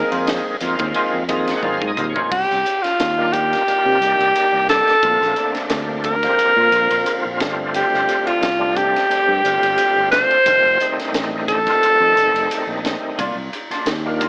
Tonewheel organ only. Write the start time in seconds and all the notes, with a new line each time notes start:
Already playing: D#3 G#3 A#3 C4 G#4
0.61 D#3 G#3 A#3 C4 F4
1.28 D#3 G#3 A#3 C4 G#4 A#5
1.48 F#5
1.64 F5
1.87 D#5
1.98 D#3 G#3 A#3 C4 F4
2.10 C#5
3.18 D#3 G3 A#3 D4 F4
3.68 D#3 G3 A#3 D4 F4
4.02 D#3 G3 A#3 D4 G4
5.03 D3 A3 A#3 C4 F4
5.37 D3 A3 A#3 C4 D4
6.24 D3 F3 A#3 C4 G4
6.56 D3 F3 A#3 C4 F4
7.41 D3 G3 A3 C4 F4
8.59 D3 G3 A3 C4 D4
9.09 D3 G3 A3 C4 G4
9.44 D3 G3 A3 C4 F4
10.46 D#3 G3 A3 C4 F4
10.81 D#3 G3 A3 C4 D#4
11.67 D#3 G3 A3 C4 F4
12.01 D#3 G3 A3 C4 D#4
14.05 D#3 G3 A#3 D4 F4